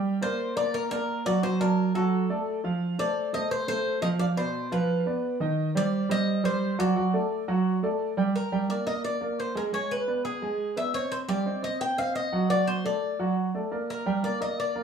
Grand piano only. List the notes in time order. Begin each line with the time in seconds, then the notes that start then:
Already playing: G3 G4 G5
0.21 A#3 A#4 D5
0.56 A#3 A#4 D5
0.91 A#3 A#4 D5
1.26 F#3 F#4 F#5
1.43 F#3 F#4 F#5
1.60 F#3 D5 A5
1.95 F#3 F#4 F#5
2.30 A3 A4 D5
2.64 F3 F4 F5
2.99 A3 A4 C5
3.33 A3 A4 C5
3.68 A3 A4 C5
4.02 F3 F4 F5
4.19 F3 F4 F5
4.37 B2 D5 B5
4.72 F3 F4 F5
5.06 B3 B4 D5
5.40 D#3 D#4 D#5
5.75 G3 G4 C5
6.09 G3 G4 C5
6.44 G3 G4 C5
6.79 F#3 F#4 F#5
6.96 F#3 F#4 F#5
7.13 A3 A4 D5
7.48 F#3 F#4 F#5
7.83 A3 A4 D5
8.17 G3 G4 G5
8.52 G3 G4 G5
8.69 A#3 A#4 D5
8.86 A#3 A#4 D5
9.21 A#3 A#4 D5
9.55 G#3 G#4 G#5
9.72 G#3 G#4 G#5
10.07 B3 B4 D5
10.42 G#3 G#4 G#5
10.76 B3 B4 D5
10.94 C4 C5 D#5
11.28 G3 G4 G5
11.46 C4 C5 D#5
11.62 C4 C5 D#5
11.98 C4 C5 D#5
12.32 F#3 F#4 F#5
12.50 F#3 F#4 F#5
12.85 A3 A4 D5
13.19 F#3 F#4 F#5
13.54 A3 A4 D5
13.71 A#3 A#4 D5
14.06 G3 G4 G5
14.23 A#3 A#4 D5
14.41 A#3 A#4 D5
14.75 A#3 A#4 D5